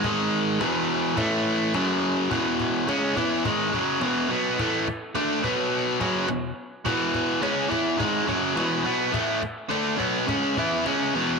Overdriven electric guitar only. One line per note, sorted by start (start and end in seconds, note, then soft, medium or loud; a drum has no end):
0.04 0.60 G#2 medium
0.04 0.60 D#3 loud
0.04 0.61 G#3 loud
0.60 1.16 E2 medium
0.60 1.16 B2 medium
0.60 1.16 E3 medium
1.16 1.72 A2 medium
1.16 1.73 E3 loud
1.16 1.73 A3 loud
1.74 2.29 F#2 medium
1.74 2.30 C#3 medium
1.74 2.31 F#3 loud
2.29 2.86 E2 medium
2.29 2.86 B2 medium
2.29 2.87 E3 medium
2.87 3.15 C#3 medium
2.87 3.16 G#3 medium
2.87 3.16 C#4 loud
3.16 3.43 E3 medium
3.16 3.44 B3 medium
3.16 3.44 E4 loud
3.44 3.72 G#2 medium
3.44 3.72 D#3 medium
3.44 3.73 G#3 medium
3.73 4.00 F#2 medium
3.73 4.01 C#3 medium
3.73 4.01 F#3 medium
4.01 4.28 E2 medium
4.01 4.28 B2 medium
4.01 4.30 E3 medium
4.29 4.57 B2 medium
4.29 4.58 F#3 loud
4.29 4.58 B3 loud
4.59 4.86 A2 medium
4.59 4.87 E3 medium
4.59 4.87 A3 medium
4.88 muted overdriven electric guitar stroke soft
5.15 5.42 D3 medium
5.15 5.43 A3 medium
5.15 5.43 D4 medium
5.43 5.99 B2 loud
5.43 6.00 F#3 loud
5.43 6.00 B3 loud
5.99 6.27 F#2 medium
5.99 6.28 C#3 medium
5.99 6.28 F#3 loud
6.28 6.51 E2 medium
6.28 6.51 B2 medium
6.85 7.42 E2 medium
6.85 7.41 B2 medium
6.85 7.42 E3 loud
7.41 7.68 C#3 medium
7.41 7.69 G#3 medium
7.41 7.70 C#4 medium
7.69 7.97 E3 medium
7.69 7.98 B3 loud
7.69 7.99 E4 loud
7.97 8.25 G#2 medium
7.97 8.26 D#3 medium
7.97 8.27 G#3 medium
8.26 8.55 F#2 medium
8.26 8.55 C#3 medium
8.26 8.56 F#3 medium
8.55 8.84 E2 medium
8.55 8.83 B2 medium
8.55 8.85 E3 medium
8.84 9.12 B2 medium
8.84 9.12 F#3 medium
8.84 9.13 B3 medium
9.12 9.41 A2 medium
9.12 9.41 E3 medium
9.12 9.41 A3 medium
9.42 muted overdriven electric guitar stroke medium
9.69 9.97 D3 medium
9.69 9.98 A3 medium
9.69 9.98 D4 medium
9.98 10.26 B2 loud
9.98 10.27 F#3 loud
9.98 10.27 B3 loud
10.27 10.55 C#3 medium
10.27 10.55 G#3 medium
10.27 10.56 C#4 medium
10.57 10.84 E3 medium
10.57 10.85 B3 medium
10.57 10.85 E4 loud
10.85 11.13 C#3 medium
10.85 11.13 G#3 medium
10.85 11.14 C#4 medium
11.13 11.39 E2 medium
11.13 11.39 B2 medium
11.13 11.39 E3 loud